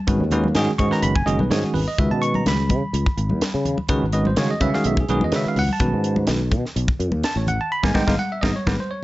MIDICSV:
0, 0, Header, 1, 5, 480
1, 0, Start_track
1, 0, Key_signature, 4, "minor"
1, 0, Tempo, 477327
1, 75, Time_signature, 4, 2, 24, 8
1, 9090, End_track
2, 0, Start_track
2, 0, Title_t, "Tine electric piano"
2, 0, Program_c, 0, 4
2, 71, Note_on_c, 0, 51, 76
2, 75, Note_on_c, 0, 56, 71
2, 75, Note_on_c, 0, 61, 74
2, 76, Note_on_c, 0, 66, 72
2, 84, Note_on_c, 0, 71, 77
2, 226, Note_off_c, 0, 51, 0
2, 228, Note_off_c, 0, 56, 0
2, 228, Note_off_c, 0, 61, 0
2, 228, Note_off_c, 0, 66, 0
2, 232, Note_off_c, 0, 71, 0
2, 319, Note_on_c, 0, 61, 83
2, 322, Note_on_c, 0, 51, 83
2, 322, Note_on_c, 0, 56, 84
2, 323, Note_on_c, 0, 66, 82
2, 327, Note_on_c, 0, 71, 96
2, 470, Note_off_c, 0, 61, 0
2, 471, Note_off_c, 0, 51, 0
2, 471, Note_off_c, 0, 56, 0
2, 472, Note_off_c, 0, 66, 0
2, 474, Note_off_c, 0, 71, 0
2, 551, Note_on_c, 0, 51, 94
2, 556, Note_on_c, 0, 61, 87
2, 559, Note_on_c, 0, 56, 81
2, 562, Note_on_c, 0, 66, 90
2, 566, Note_on_c, 0, 68, 105
2, 706, Note_off_c, 0, 51, 0
2, 708, Note_off_c, 0, 61, 0
2, 710, Note_off_c, 0, 56, 0
2, 711, Note_off_c, 0, 66, 0
2, 713, Note_off_c, 0, 68, 0
2, 789, Note_on_c, 0, 85, 89
2, 798, Note_on_c, 0, 51, 71
2, 801, Note_on_c, 0, 56, 68
2, 805, Note_on_c, 0, 61, 72
2, 806, Note_on_c, 0, 68, 80
2, 808, Note_on_c, 0, 66, 70
2, 874, Note_off_c, 0, 51, 0
2, 876, Note_off_c, 0, 56, 0
2, 878, Note_off_c, 0, 61, 0
2, 878, Note_off_c, 0, 68, 0
2, 879, Note_off_c, 0, 66, 0
2, 912, Note_on_c, 0, 51, 78
2, 914, Note_off_c, 0, 85, 0
2, 918, Note_on_c, 0, 56, 74
2, 918, Note_on_c, 0, 71, 86
2, 919, Note_on_c, 0, 61, 72
2, 925, Note_on_c, 0, 66, 71
2, 931, Note_on_c, 0, 82, 91
2, 1033, Note_on_c, 0, 83, 98
2, 1037, Note_off_c, 0, 82, 0
2, 1138, Note_off_c, 0, 51, 0
2, 1141, Note_off_c, 0, 56, 0
2, 1141, Note_off_c, 0, 61, 0
2, 1141, Note_off_c, 0, 71, 0
2, 1144, Note_off_c, 0, 66, 0
2, 1156, Note_off_c, 0, 83, 0
2, 1160, Note_on_c, 0, 80, 85
2, 1267, Note_on_c, 0, 56, 75
2, 1267, Note_on_c, 0, 75, 83
2, 1271, Note_off_c, 0, 80, 0
2, 1273, Note_on_c, 0, 51, 81
2, 1273, Note_on_c, 0, 66, 76
2, 1275, Note_on_c, 0, 61, 73
2, 1279, Note_on_c, 0, 68, 89
2, 1393, Note_off_c, 0, 75, 0
2, 1412, Note_on_c, 0, 71, 73
2, 1424, Note_off_c, 0, 56, 0
2, 1426, Note_off_c, 0, 51, 0
2, 1426, Note_off_c, 0, 66, 0
2, 1427, Note_off_c, 0, 61, 0
2, 1429, Note_off_c, 0, 68, 0
2, 1511, Note_on_c, 0, 51, 78
2, 1513, Note_on_c, 0, 56, 68
2, 1517, Note_on_c, 0, 73, 88
2, 1518, Note_off_c, 0, 71, 0
2, 1518, Note_on_c, 0, 61, 72
2, 1522, Note_on_c, 0, 66, 69
2, 1523, Note_on_c, 0, 68, 82
2, 1638, Note_off_c, 0, 73, 0
2, 1645, Note_off_c, 0, 66, 0
2, 1657, Note_on_c, 0, 66, 52
2, 1748, Note_on_c, 0, 71, 87
2, 1760, Note_off_c, 0, 66, 0
2, 1812, Note_off_c, 0, 51, 0
2, 1813, Note_off_c, 0, 56, 0
2, 1815, Note_off_c, 0, 61, 0
2, 1818, Note_off_c, 0, 68, 0
2, 1873, Note_off_c, 0, 71, 0
2, 1888, Note_on_c, 0, 75, 84
2, 1995, Note_off_c, 0, 75, 0
2, 1998, Note_on_c, 0, 56, 68
2, 2000, Note_on_c, 0, 51, 75
2, 2002, Note_on_c, 0, 61, 65
2, 2004, Note_on_c, 0, 76, 73
2, 2006, Note_on_c, 0, 66, 64
2, 2010, Note_on_c, 0, 71, 74
2, 2121, Note_off_c, 0, 76, 0
2, 2126, Note_on_c, 0, 81, 82
2, 2229, Note_on_c, 0, 85, 107
2, 2234, Note_off_c, 0, 81, 0
2, 2354, Note_off_c, 0, 85, 0
2, 2367, Note_on_c, 0, 82, 80
2, 2474, Note_off_c, 0, 82, 0
2, 2493, Note_on_c, 0, 83, 89
2, 2595, Note_off_c, 0, 51, 0
2, 2595, Note_off_c, 0, 56, 0
2, 2596, Note_off_c, 0, 61, 0
2, 2599, Note_off_c, 0, 66, 0
2, 2601, Note_off_c, 0, 71, 0
2, 3883, Note_off_c, 0, 83, 0
2, 3910, Note_on_c, 0, 51, 90
2, 3913, Note_on_c, 0, 56, 84
2, 3916, Note_on_c, 0, 61, 83
2, 3916, Note_on_c, 0, 66, 81
2, 3917, Note_on_c, 0, 71, 99
2, 4064, Note_off_c, 0, 51, 0
2, 4066, Note_off_c, 0, 56, 0
2, 4067, Note_off_c, 0, 61, 0
2, 4067, Note_off_c, 0, 66, 0
2, 4068, Note_off_c, 0, 71, 0
2, 4150, Note_on_c, 0, 56, 64
2, 4152, Note_on_c, 0, 51, 70
2, 4155, Note_on_c, 0, 75, 84
2, 4159, Note_on_c, 0, 61, 68
2, 4163, Note_on_c, 0, 66, 67
2, 4165, Note_on_c, 0, 71, 76
2, 4276, Note_off_c, 0, 75, 0
2, 4292, Note_on_c, 0, 72, 88
2, 4304, Note_off_c, 0, 56, 0
2, 4306, Note_off_c, 0, 51, 0
2, 4309, Note_off_c, 0, 61, 0
2, 4311, Note_off_c, 0, 66, 0
2, 4312, Note_off_c, 0, 71, 0
2, 4394, Note_on_c, 0, 56, 74
2, 4397, Note_off_c, 0, 72, 0
2, 4397, Note_on_c, 0, 51, 76
2, 4398, Note_on_c, 0, 66, 76
2, 4401, Note_on_c, 0, 61, 73
2, 4401, Note_on_c, 0, 73, 90
2, 4405, Note_on_c, 0, 68, 89
2, 4519, Note_off_c, 0, 73, 0
2, 4530, Note_on_c, 0, 75, 89
2, 4546, Note_off_c, 0, 56, 0
2, 4548, Note_off_c, 0, 51, 0
2, 4549, Note_off_c, 0, 66, 0
2, 4550, Note_off_c, 0, 61, 0
2, 4552, Note_off_c, 0, 68, 0
2, 4636, Note_off_c, 0, 75, 0
2, 4637, Note_on_c, 0, 76, 96
2, 4639, Note_on_c, 0, 56, 67
2, 4641, Note_on_c, 0, 51, 77
2, 4643, Note_on_c, 0, 66, 67
2, 4644, Note_on_c, 0, 71, 83
2, 4645, Note_on_c, 0, 61, 74
2, 4714, Note_off_c, 0, 56, 0
2, 4715, Note_off_c, 0, 51, 0
2, 4716, Note_off_c, 0, 66, 0
2, 4716, Note_off_c, 0, 71, 0
2, 4717, Note_off_c, 0, 61, 0
2, 4757, Note_off_c, 0, 76, 0
2, 4762, Note_on_c, 0, 51, 87
2, 4765, Note_on_c, 0, 56, 75
2, 4769, Note_on_c, 0, 61, 77
2, 4769, Note_on_c, 0, 66, 74
2, 4771, Note_on_c, 0, 77, 98
2, 4774, Note_on_c, 0, 68, 89
2, 4876, Note_off_c, 0, 77, 0
2, 4893, Note_on_c, 0, 76, 85
2, 4982, Note_off_c, 0, 51, 0
2, 4983, Note_off_c, 0, 56, 0
2, 4985, Note_off_c, 0, 61, 0
2, 4986, Note_off_c, 0, 66, 0
2, 4988, Note_off_c, 0, 68, 0
2, 5005, Note_off_c, 0, 76, 0
2, 5029, Note_on_c, 0, 68, 60
2, 5117, Note_off_c, 0, 68, 0
2, 5121, Note_on_c, 0, 51, 86
2, 5121, Note_on_c, 0, 56, 74
2, 5122, Note_on_c, 0, 61, 74
2, 5125, Note_on_c, 0, 71, 90
2, 5126, Note_on_c, 0, 66, 80
2, 5129, Note_on_c, 0, 68, 95
2, 5241, Note_off_c, 0, 71, 0
2, 5270, Note_off_c, 0, 51, 0
2, 5270, Note_off_c, 0, 56, 0
2, 5270, Note_off_c, 0, 61, 0
2, 5272, Note_off_c, 0, 66, 0
2, 5272, Note_on_c, 0, 75, 84
2, 5274, Note_off_c, 0, 68, 0
2, 5347, Note_on_c, 0, 51, 77
2, 5348, Note_on_c, 0, 66, 67
2, 5352, Note_on_c, 0, 61, 69
2, 5353, Note_on_c, 0, 56, 72
2, 5354, Note_on_c, 0, 71, 83
2, 5367, Note_off_c, 0, 75, 0
2, 5389, Note_on_c, 0, 76, 95
2, 5494, Note_off_c, 0, 76, 0
2, 5514, Note_on_c, 0, 77, 89
2, 5608, Note_off_c, 0, 77, 0
2, 5619, Note_on_c, 0, 78, 110
2, 5649, Note_off_c, 0, 51, 0
2, 5650, Note_off_c, 0, 66, 0
2, 5652, Note_off_c, 0, 56, 0
2, 5652, Note_off_c, 0, 61, 0
2, 5653, Note_off_c, 0, 71, 0
2, 5728, Note_off_c, 0, 78, 0
2, 5759, Note_on_c, 0, 81, 92
2, 5829, Note_on_c, 0, 56, 64
2, 5832, Note_on_c, 0, 51, 69
2, 5833, Note_on_c, 0, 61, 69
2, 5837, Note_on_c, 0, 66, 65
2, 5839, Note_on_c, 0, 71, 82
2, 6187, Note_off_c, 0, 81, 0
2, 6429, Note_off_c, 0, 56, 0
2, 6431, Note_off_c, 0, 51, 0
2, 6432, Note_off_c, 0, 61, 0
2, 6433, Note_off_c, 0, 66, 0
2, 6434, Note_off_c, 0, 71, 0
2, 7287, Note_on_c, 0, 81, 97
2, 7402, Note_off_c, 0, 81, 0
2, 7412, Note_on_c, 0, 73, 69
2, 7517, Note_off_c, 0, 73, 0
2, 7524, Note_on_c, 0, 78, 95
2, 7641, Note_off_c, 0, 78, 0
2, 7651, Note_on_c, 0, 81, 92
2, 7756, Note_off_c, 0, 81, 0
2, 7762, Note_on_c, 0, 83, 102
2, 7876, Note_on_c, 0, 56, 100
2, 7876, Note_on_c, 0, 63, 91
2, 7880, Note_off_c, 0, 83, 0
2, 7880, Note_on_c, 0, 59, 95
2, 7881, Note_on_c, 0, 80, 88
2, 7950, Note_off_c, 0, 56, 0
2, 7950, Note_off_c, 0, 63, 0
2, 7953, Note_off_c, 0, 59, 0
2, 7986, Note_on_c, 0, 59, 98
2, 7991, Note_off_c, 0, 80, 0
2, 7991, Note_on_c, 0, 79, 97
2, 7994, Note_on_c, 0, 56, 100
2, 7994, Note_on_c, 0, 63, 93
2, 8070, Note_off_c, 0, 59, 0
2, 8074, Note_off_c, 0, 56, 0
2, 8074, Note_off_c, 0, 63, 0
2, 8114, Note_off_c, 0, 79, 0
2, 8115, Note_on_c, 0, 56, 94
2, 8121, Note_on_c, 0, 63, 94
2, 8123, Note_on_c, 0, 77, 87
2, 8125, Note_on_c, 0, 59, 90
2, 8190, Note_off_c, 0, 56, 0
2, 8193, Note_off_c, 0, 63, 0
2, 8196, Note_off_c, 0, 59, 0
2, 8232, Note_off_c, 0, 77, 0
2, 8237, Note_on_c, 0, 78, 104
2, 8358, Note_off_c, 0, 78, 0
2, 8368, Note_on_c, 0, 76, 78
2, 8462, Note_on_c, 0, 75, 96
2, 8474, Note_on_c, 0, 63, 93
2, 8475, Note_off_c, 0, 76, 0
2, 8478, Note_on_c, 0, 56, 96
2, 8481, Note_on_c, 0, 59, 95
2, 8555, Note_off_c, 0, 63, 0
2, 8557, Note_off_c, 0, 56, 0
2, 8559, Note_off_c, 0, 59, 0
2, 8590, Note_off_c, 0, 75, 0
2, 8608, Note_on_c, 0, 73, 82
2, 8715, Note_off_c, 0, 73, 0
2, 8718, Note_on_c, 0, 59, 92
2, 8721, Note_on_c, 0, 63, 91
2, 8723, Note_on_c, 0, 56, 92
2, 8725, Note_on_c, 0, 71, 88
2, 8797, Note_off_c, 0, 59, 0
2, 8799, Note_off_c, 0, 63, 0
2, 8800, Note_off_c, 0, 56, 0
2, 8842, Note_off_c, 0, 71, 0
2, 8851, Note_on_c, 0, 72, 85
2, 8957, Note_off_c, 0, 72, 0
2, 8958, Note_on_c, 0, 73, 84
2, 9078, Note_off_c, 0, 73, 0
2, 9090, End_track
3, 0, Start_track
3, 0, Title_t, "Fretless electric bass"
3, 0, Program_c, 1, 35
3, 77, Note_on_c, 1, 32, 99
3, 190, Note_off_c, 1, 32, 0
3, 200, Note_on_c, 1, 39, 94
3, 523, Note_off_c, 1, 39, 0
3, 554, Note_on_c, 1, 44, 95
3, 669, Note_off_c, 1, 44, 0
3, 796, Note_on_c, 1, 44, 92
3, 910, Note_off_c, 1, 44, 0
3, 1029, Note_on_c, 1, 30, 105
3, 1250, Note_off_c, 1, 30, 0
3, 1269, Note_on_c, 1, 30, 86
3, 1386, Note_off_c, 1, 30, 0
3, 1392, Note_on_c, 1, 35, 92
3, 1500, Note_off_c, 1, 35, 0
3, 1513, Note_on_c, 1, 44, 97
3, 1628, Note_off_c, 1, 44, 0
3, 1750, Note_on_c, 1, 32, 83
3, 1866, Note_off_c, 1, 32, 0
3, 1995, Note_on_c, 1, 37, 94
3, 2109, Note_off_c, 1, 37, 0
3, 2117, Note_on_c, 1, 47, 78
3, 2441, Note_off_c, 1, 47, 0
3, 2472, Note_on_c, 1, 37, 79
3, 2715, Note_on_c, 1, 49, 83
3, 2731, Note_off_c, 1, 37, 0
3, 2829, Note_off_c, 1, 49, 0
3, 2949, Note_on_c, 1, 37, 98
3, 3066, Note_off_c, 1, 37, 0
3, 3190, Note_on_c, 1, 32, 93
3, 3318, Note_on_c, 1, 40, 76
3, 3333, Note_off_c, 1, 32, 0
3, 3423, Note_off_c, 1, 40, 0
3, 3561, Note_on_c, 1, 49, 93
3, 3778, Note_off_c, 1, 49, 0
3, 3913, Note_on_c, 1, 37, 104
3, 4028, Note_off_c, 1, 37, 0
3, 4039, Note_on_c, 1, 32, 99
3, 4361, Note_off_c, 1, 32, 0
3, 4393, Note_on_c, 1, 49, 91
3, 4508, Note_off_c, 1, 49, 0
3, 4631, Note_on_c, 1, 49, 92
3, 4747, Note_off_c, 1, 49, 0
3, 4876, Note_on_c, 1, 35, 105
3, 5093, Note_off_c, 1, 35, 0
3, 5114, Note_on_c, 1, 35, 91
3, 5228, Note_off_c, 1, 35, 0
3, 5239, Note_on_c, 1, 40, 89
3, 5343, Note_off_c, 1, 40, 0
3, 5351, Note_on_c, 1, 49, 100
3, 5466, Note_off_c, 1, 49, 0
3, 5594, Note_on_c, 1, 37, 95
3, 5708, Note_off_c, 1, 37, 0
3, 5833, Note_on_c, 1, 35, 92
3, 5947, Note_off_c, 1, 35, 0
3, 5967, Note_on_c, 1, 44, 88
3, 6286, Note_off_c, 1, 44, 0
3, 6313, Note_on_c, 1, 35, 89
3, 6551, Note_on_c, 1, 47, 83
3, 6566, Note_off_c, 1, 35, 0
3, 6667, Note_off_c, 1, 47, 0
3, 6796, Note_on_c, 1, 35, 105
3, 6909, Note_off_c, 1, 35, 0
3, 7034, Note_on_c, 1, 42, 95
3, 7158, Note_off_c, 1, 42, 0
3, 7158, Note_on_c, 1, 39, 84
3, 7263, Note_off_c, 1, 39, 0
3, 7397, Note_on_c, 1, 33, 92
3, 7617, Note_off_c, 1, 33, 0
3, 7881, Note_on_c, 1, 32, 94
3, 7965, Note_off_c, 1, 32, 0
3, 7996, Note_on_c, 1, 32, 93
3, 8088, Note_off_c, 1, 32, 0
3, 8120, Note_on_c, 1, 32, 98
3, 8205, Note_off_c, 1, 32, 0
3, 8478, Note_on_c, 1, 32, 91
3, 8570, Note_off_c, 1, 32, 0
3, 8716, Note_on_c, 1, 32, 93
3, 8809, Note_off_c, 1, 32, 0
3, 9090, End_track
4, 0, Start_track
4, 0, Title_t, "Muted fretless electric bass strokes"
4, 1637, Note_on_c, 9, 29, 35
4, 1738, Note_off_c, 9, 29, 0
4, 5483, Note_on_c, 9, 29, 38
4, 5583, Note_off_c, 9, 29, 0
4, 9090, End_track
5, 0, Start_track
5, 0, Title_t, "Drums"
5, 75, Note_on_c, 9, 64, 57
5, 76, Note_on_c, 9, 42, 76
5, 78, Note_on_c, 9, 36, 91
5, 175, Note_off_c, 9, 64, 0
5, 176, Note_off_c, 9, 42, 0
5, 178, Note_off_c, 9, 36, 0
5, 310, Note_on_c, 9, 64, 56
5, 315, Note_on_c, 9, 42, 58
5, 410, Note_off_c, 9, 64, 0
5, 416, Note_off_c, 9, 42, 0
5, 439, Note_on_c, 9, 63, 67
5, 540, Note_off_c, 9, 63, 0
5, 550, Note_on_c, 9, 42, 80
5, 556, Note_on_c, 9, 38, 108
5, 651, Note_off_c, 9, 42, 0
5, 657, Note_off_c, 9, 38, 0
5, 790, Note_on_c, 9, 64, 67
5, 793, Note_on_c, 9, 42, 65
5, 796, Note_on_c, 9, 36, 81
5, 890, Note_off_c, 9, 64, 0
5, 894, Note_off_c, 9, 42, 0
5, 897, Note_off_c, 9, 36, 0
5, 923, Note_on_c, 9, 38, 34
5, 1023, Note_off_c, 9, 38, 0
5, 1032, Note_on_c, 9, 42, 84
5, 1132, Note_off_c, 9, 42, 0
5, 1162, Note_on_c, 9, 36, 81
5, 1263, Note_off_c, 9, 36, 0
5, 1281, Note_on_c, 9, 42, 62
5, 1381, Note_off_c, 9, 42, 0
5, 1399, Note_on_c, 9, 63, 73
5, 1499, Note_off_c, 9, 63, 0
5, 1521, Note_on_c, 9, 42, 83
5, 1527, Note_on_c, 9, 38, 106
5, 1622, Note_off_c, 9, 42, 0
5, 1628, Note_off_c, 9, 38, 0
5, 1750, Note_on_c, 9, 64, 71
5, 1763, Note_on_c, 9, 46, 72
5, 1851, Note_off_c, 9, 64, 0
5, 1863, Note_off_c, 9, 46, 0
5, 1996, Note_on_c, 9, 36, 99
5, 1996, Note_on_c, 9, 42, 72
5, 2096, Note_off_c, 9, 42, 0
5, 2097, Note_off_c, 9, 36, 0
5, 2240, Note_on_c, 9, 42, 56
5, 2340, Note_off_c, 9, 42, 0
5, 2356, Note_on_c, 9, 63, 70
5, 2456, Note_off_c, 9, 63, 0
5, 2476, Note_on_c, 9, 42, 78
5, 2482, Note_on_c, 9, 38, 98
5, 2576, Note_off_c, 9, 42, 0
5, 2582, Note_off_c, 9, 38, 0
5, 2710, Note_on_c, 9, 63, 67
5, 2710, Note_on_c, 9, 64, 74
5, 2711, Note_on_c, 9, 42, 61
5, 2715, Note_on_c, 9, 36, 80
5, 2810, Note_off_c, 9, 63, 0
5, 2810, Note_off_c, 9, 64, 0
5, 2812, Note_off_c, 9, 42, 0
5, 2815, Note_off_c, 9, 36, 0
5, 2956, Note_on_c, 9, 42, 75
5, 3057, Note_off_c, 9, 42, 0
5, 3081, Note_on_c, 9, 36, 90
5, 3182, Note_off_c, 9, 36, 0
5, 3193, Note_on_c, 9, 42, 62
5, 3294, Note_off_c, 9, 42, 0
5, 3313, Note_on_c, 9, 63, 76
5, 3414, Note_off_c, 9, 63, 0
5, 3433, Note_on_c, 9, 42, 82
5, 3439, Note_on_c, 9, 38, 108
5, 3534, Note_off_c, 9, 42, 0
5, 3540, Note_off_c, 9, 38, 0
5, 3674, Note_on_c, 9, 64, 76
5, 3677, Note_on_c, 9, 42, 59
5, 3774, Note_off_c, 9, 64, 0
5, 3778, Note_off_c, 9, 42, 0
5, 3797, Note_on_c, 9, 63, 75
5, 3898, Note_off_c, 9, 63, 0
5, 3907, Note_on_c, 9, 42, 80
5, 3912, Note_on_c, 9, 36, 100
5, 4008, Note_off_c, 9, 42, 0
5, 4013, Note_off_c, 9, 36, 0
5, 4148, Note_on_c, 9, 42, 60
5, 4248, Note_off_c, 9, 42, 0
5, 4275, Note_on_c, 9, 63, 75
5, 4376, Note_off_c, 9, 63, 0
5, 4389, Note_on_c, 9, 42, 84
5, 4395, Note_on_c, 9, 38, 104
5, 4489, Note_off_c, 9, 42, 0
5, 4495, Note_off_c, 9, 38, 0
5, 4630, Note_on_c, 9, 42, 66
5, 4632, Note_on_c, 9, 63, 68
5, 4632, Note_on_c, 9, 64, 75
5, 4634, Note_on_c, 9, 36, 76
5, 4731, Note_off_c, 9, 42, 0
5, 4732, Note_off_c, 9, 63, 0
5, 4732, Note_off_c, 9, 64, 0
5, 4735, Note_off_c, 9, 36, 0
5, 4764, Note_on_c, 9, 38, 37
5, 4864, Note_off_c, 9, 38, 0
5, 4869, Note_on_c, 9, 42, 79
5, 4969, Note_off_c, 9, 42, 0
5, 4998, Note_on_c, 9, 36, 89
5, 5099, Note_off_c, 9, 36, 0
5, 5114, Note_on_c, 9, 42, 71
5, 5214, Note_off_c, 9, 42, 0
5, 5239, Note_on_c, 9, 63, 76
5, 5339, Note_off_c, 9, 63, 0
5, 5348, Note_on_c, 9, 42, 84
5, 5354, Note_on_c, 9, 38, 106
5, 5449, Note_off_c, 9, 42, 0
5, 5455, Note_off_c, 9, 38, 0
5, 5593, Note_on_c, 9, 46, 75
5, 5593, Note_on_c, 9, 64, 70
5, 5694, Note_off_c, 9, 46, 0
5, 5694, Note_off_c, 9, 64, 0
5, 5718, Note_on_c, 9, 63, 70
5, 5818, Note_off_c, 9, 63, 0
5, 5828, Note_on_c, 9, 42, 78
5, 5833, Note_on_c, 9, 36, 93
5, 5929, Note_off_c, 9, 42, 0
5, 5934, Note_off_c, 9, 36, 0
5, 6074, Note_on_c, 9, 42, 59
5, 6174, Note_off_c, 9, 42, 0
5, 6196, Note_on_c, 9, 63, 76
5, 6296, Note_off_c, 9, 63, 0
5, 6304, Note_on_c, 9, 42, 76
5, 6310, Note_on_c, 9, 38, 101
5, 6404, Note_off_c, 9, 42, 0
5, 6410, Note_off_c, 9, 38, 0
5, 6550, Note_on_c, 9, 63, 69
5, 6551, Note_on_c, 9, 42, 59
5, 6552, Note_on_c, 9, 36, 78
5, 6651, Note_off_c, 9, 63, 0
5, 6652, Note_off_c, 9, 42, 0
5, 6653, Note_off_c, 9, 36, 0
5, 6692, Note_on_c, 9, 38, 36
5, 6792, Note_off_c, 9, 38, 0
5, 6801, Note_on_c, 9, 42, 78
5, 6902, Note_off_c, 9, 42, 0
5, 6920, Note_on_c, 9, 36, 91
5, 7021, Note_off_c, 9, 36, 0
5, 7040, Note_on_c, 9, 42, 65
5, 7141, Note_off_c, 9, 42, 0
5, 7158, Note_on_c, 9, 63, 82
5, 7258, Note_off_c, 9, 63, 0
5, 7276, Note_on_c, 9, 42, 79
5, 7282, Note_on_c, 9, 38, 100
5, 7377, Note_off_c, 9, 42, 0
5, 7383, Note_off_c, 9, 38, 0
5, 7512, Note_on_c, 9, 64, 80
5, 7520, Note_on_c, 9, 42, 58
5, 7613, Note_off_c, 9, 64, 0
5, 7620, Note_off_c, 9, 42, 0
5, 7880, Note_on_c, 9, 36, 90
5, 7880, Note_on_c, 9, 63, 100
5, 7886, Note_on_c, 9, 38, 88
5, 7980, Note_off_c, 9, 36, 0
5, 7981, Note_off_c, 9, 63, 0
5, 7986, Note_off_c, 9, 38, 0
5, 7995, Note_on_c, 9, 36, 96
5, 7998, Note_on_c, 9, 63, 96
5, 8000, Note_on_c, 9, 38, 93
5, 8095, Note_off_c, 9, 36, 0
5, 8099, Note_off_c, 9, 63, 0
5, 8101, Note_off_c, 9, 38, 0
5, 8122, Note_on_c, 9, 36, 89
5, 8122, Note_on_c, 9, 63, 98
5, 8129, Note_on_c, 9, 38, 93
5, 8222, Note_off_c, 9, 36, 0
5, 8223, Note_off_c, 9, 63, 0
5, 8230, Note_off_c, 9, 38, 0
5, 8473, Note_on_c, 9, 63, 99
5, 8477, Note_on_c, 9, 36, 97
5, 8485, Note_on_c, 9, 38, 97
5, 8574, Note_off_c, 9, 63, 0
5, 8578, Note_off_c, 9, 36, 0
5, 8585, Note_off_c, 9, 38, 0
5, 8714, Note_on_c, 9, 63, 99
5, 8719, Note_on_c, 9, 36, 91
5, 8725, Note_on_c, 9, 38, 94
5, 8815, Note_off_c, 9, 63, 0
5, 8819, Note_off_c, 9, 36, 0
5, 8825, Note_off_c, 9, 38, 0
5, 9090, End_track
0, 0, End_of_file